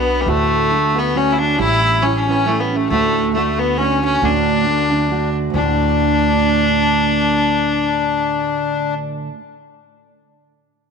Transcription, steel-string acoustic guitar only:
0.00 0.27 B3 medium
0.00 0.26 D4 medium
0.00 0.27 F#4 medium
0.00 0.28 B4 medium
0.27 0.71 D2 medium
0.27 0.71 A2 medium
0.27 0.69 D3 medium
0.27 0.72 A3 medium
0.27 0.70 D4 medium
0.27 0.72 F#4 medium
0.70 0.95 D3 medium
0.70 0.93 A3 medium
0.70 0.94 D4 medium
0.70 0.93 F#4 medium
0.94 1.13 D3 soft
0.94 1.14 A3 soft
0.94 1.13 D4 soft
0.94 1.14 F#4 medium
1.14 1.39 D3 medium
1.14 1.38 A3 medium
1.14 1.39 D4 medium
1.14 1.37 F#4 medium
1.38 1.58 D3 soft
1.38 1.58 A3 soft
1.38 1.58 D4 soft
1.38 1.58 F#4 soft
1.58 2.02 A2 medium
1.58 2.00 G3 medium
1.58 2.02 C#4 medium
1.58 2.02 E4 medium
1.58 2.03 G4 medium
2.02 2.27 G3 medium
2.02 2.27 C#4 medium
2.02 2.26 E4 medium
2.02 2.25 G4 medium
2.26 2.45 C#4 soft
2.26 2.46 E4 soft
2.26 2.46 G4 medium
2.46 2.70 G3 medium
2.46 2.71 C#4 medium
2.46 2.70 E4 medium
2.46 2.69 G4 medium
2.70 2.91 C#4 soft
2.70 2.90 E4 soft
2.70 2.90 G4 soft
2.90 3.34 D2 medium
2.90 3.34 A2 medium
2.90 3.35 D3 medium
2.90 3.36 A3 medium
2.90 3.35 D4 medium
2.90 3.37 F#4 medium
3.35 3.77 D3 medium
3.35 3.79 A3 medium
3.35 3.78 D4 medium
3.35 3.80 F#4 medium
3.78 4.02 D3 medium
3.78 4.01 A3 medium
3.78 4.02 D4 medium
3.78 4.00 F#4 medium
4.02 4.21 D3 soft
4.02 4.21 A3 soft
4.02 4.21 D4 soft
4.02 4.22 F#4 medium
4.21 4.66 D2 medium
4.21 4.66 A2 medium
4.21 4.65 D3 medium
4.21 4.66 A3 medium
4.21 4.65 D4 medium
4.21 4.67 F#4 medium
4.65 4.90 D3 medium
4.65 4.89 A3 medium
4.65 4.90 D4 medium
4.65 4.88 F#4 medium
4.89 5.08 D3 medium
4.89 5.10 A3 soft
4.89 5.09 D4 medium
4.89 5.09 F#4 soft
5.09 5.56 D3 medium
5.09 5.60 A3 medium
5.09 5.58 D4 medium
5.09 5.62 F#4 medium
5.50 9.28 D2 medium
5.50 9.31 A2 medium
5.56 9.34 D3 medium
5.56 9.36 D4 medium
5.61 9.39 A3 medium
5.61 9.40 F#4 medium

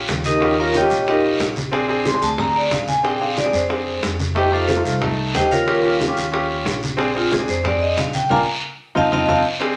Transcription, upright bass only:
0.09 0.85 D#2 medium
0.91 1.37 A#1 medium
1.40 2.17 A#1 medium
2.21 2.68 D2 medium
2.71 3.48 A#1 medium
3.53 3.99 F2 medium
4.03 4.80 F2 loud
4.85 5.31 C2 medium
5.35 6.11 D#2 medium
6.17 6.63 D#2 medium
6.65 7.42 A#1 medium
7.48 7.94 F2 medium
7.97 8.28 A#1 loud
8.30 8.43 A#1 loud
8.96 9.08 F2 loud
9.12 9.24 F2 loud
9.28 9.40 F2 medium

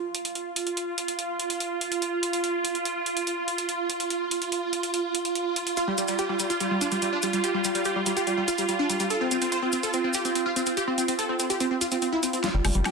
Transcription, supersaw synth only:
5.77 5.82 F4 loud
5.87 5.93 G3 medium
5.98 6.03 G3 medium
6.08 6.14 G3 medium
6.19 6.24 G4 medium
6.29 6.34 G3 medium
6.40 6.45 G3 medium
6.50 6.55 F4 loud
6.60 6.66 G3 medium
6.71 6.76 G3 medium
6.81 6.86 D4 medium
6.92 6.97 G3 medium
7.02 7.07 G3 medium
7.13 7.18 D4 loud
7.23 7.28 G3 medium
7.33 7.39 G3 medium
7.44 7.49 G4 loud
7.54 7.59 G3 medium
7.65 7.70 G3 medium
7.75 7.80 G3 medium
7.85 7.91 G4 medium
7.96 8.01 G3 medium
8.06 8.11 G3 medium
8.17 8.22 G4 medium
8.27 8.32 G3 medium
8.38 8.43 G3 medium
8.48 8.53 F4 medium
8.58 8.64 G3 medium
8.69 8.74 G3 medium
8.79 8.84 D4 loud
8.90 8.95 G3 medium
9.00 9.05 G3 medium
9.10 9.16 A4 loud
9.21 9.26 C4 medium
9.31 9.36 C4 medium
9.42 9.47 C4 medium
9.52 9.57 C5 medium
9.62 9.68 C4 medium
9.73 9.78 C4 medium
9.83 9.89 A4 medium
9.94 9.99 C4 medium
10.04 10.09 C4 medium
10.15 10.20 G4 medium
10.25 10.30 C4 medium
10.35 10.41 C4 medium
10.46 10.51 F4 loud
10.56 10.61 C4 medium
10.67 10.72 C4 medium
10.77 10.82 G4 medium
10.87 10.93 C4 medium
10.98 11.03 C4 medium
11.08 11.13 C4 medium
11.19 11.24 A4 medium
11.29 11.34 C4 medium
11.40 11.45 C4 medium
11.50 11.55 G4 medium
11.60 11.66 C4 medium
11.71 11.76 C4 medium
11.81 11.86 F4 medium
11.92 11.97 C4 medium
12.02 12.07 C4 medium
12.12 12.18 E4 loud
12.23 12.28 C4 medium
12.33 12.39 C4 medium
12.44 12.49 F4 loud
12.54 12.59 G3 medium
12.65 12.70 G3 medium
12.75 12.80 G3 medium
12.85 12.91 G4 medium

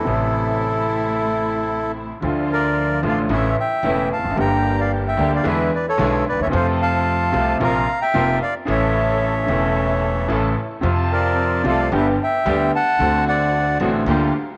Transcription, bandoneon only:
0.00 1.92 E4 medium
0.00 1.92 A4 medium
2.52 3.01 A#4 medium
2.52 3.02 D5 medium
3.07 3.19 D5 medium
3.07 3.19 F5 medium
3.32 3.56 C#5 medium
3.32 3.56 E5 medium
3.59 4.08 E5 medium
3.59 4.09 G5 medium
4.13 4.37 F5 medium
4.13 4.37 A5 medium
4.40 4.76 G5 medium
4.40 4.80 A#5 medium
4.80 4.92 D5 medium
4.80 4.92 F5 medium
5.08 5.32 E5 medium
5.08 5.32 G5 medium
5.35 5.46 D5 medium
5.35 5.48 F5 medium
5.47 5.71 B4 medium
5.47 5.71 E5 medium
5.75 5.86 B4 medium
5.75 5.86 D5 medium
5.89 6.25 A4 medium
5.89 6.25 C#5 medium
6.28 6.40 B4 medium
6.28 6.41 D5 medium
6.42 6.47 C#5 medium
6.42 6.48 E5 medium
6.55 6.67 C5 medium
6.55 6.67 F5 medium
6.82 7.58 F5 medium
6.82 7.58 A5 medium
7.63 8.00 F5 medium
7.63 8.03 A#5 medium
8.02 8.39 E5 medium
8.02 8.39 G5 medium
8.42 8.55 D5 medium
8.42 8.54 F5 medium
8.71 10.28 C#5 medium
8.71 10.27 E5 medium
11.12 11.62 A#4 medium
11.12 11.66 D5 medium
11.67 11.92 D5 medium
11.67 11.92 F5 medium
11.96 12.07 B4 medium
11.96 12.08 E5 medium
12.23 12.72 E5 medium
12.23 12.71 G5 medium
12.75 13.25 F#5 medium
12.75 13.24 A5 loud
13.28 13.78 D5 medium
13.28 13.78 F#5 medium

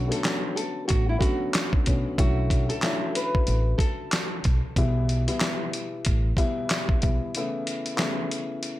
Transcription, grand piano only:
0.07 1.12 D3 medium
0.07 1.12 F#3 medium
0.07 1.12 A3 medium
0.07 1.12 B3 medium
0.07 1.13 C#4 medium
1.18 1.80 D3 medium
1.18 1.80 F#3 medium
1.18 1.80 A3 medium
1.18 1.81 B3 medium
1.18 1.81 C#4 loud
1.86 2.16 D3 medium
1.86 2.16 F#3 medium
1.86 2.16 A3 medium
1.86 2.17 B3 medium
1.86 2.17 C#4 medium
2.17 2.78 D3 medium
2.17 2.78 F#3 medium
2.17 2.78 A3 medium
2.17 2.79 C#4 medium
2.17 2.79 E4 loud
2.83 4.33 D3 medium
2.83 4.33 F#3 medium
2.83 4.34 A3 medium
2.83 4.34 C#4 medium
2.83 4.34 E4 loud
4.77 5.23 B2 medium
4.77 5.23 E3 medium
4.77 5.24 G3 medium
4.77 5.24 B3 medium
4.77 5.24 E4 loud
5.27 6.30 B2 medium
5.27 6.30 E3 medium
5.27 6.30 G3 medium
5.27 6.31 B3 medium
5.27 6.31 E4 loud
6.37 6.98 B2 medium
6.37 6.98 E3 medium
6.37 6.98 G3 medium
6.37 6.98 B3 medium
6.37 6.98 E4 loud
7.01 7.32 B2 medium
7.01 7.32 E3 medium
7.01 7.32 G3 medium
7.01 7.32 B3 medium
7.01 7.32 E4 medium
7.36 7.95 C#3 medium
7.36 7.95 E3 medium
7.36 7.95 A3 medium
7.36 7.95 B3 medium
7.36 7.96 E4 medium
7.96 8.80 C#3 loud
7.96 8.80 E3 medium
7.96 8.80 A3 medium
7.96 8.80 B3 medium
7.96 8.80 E4 loud

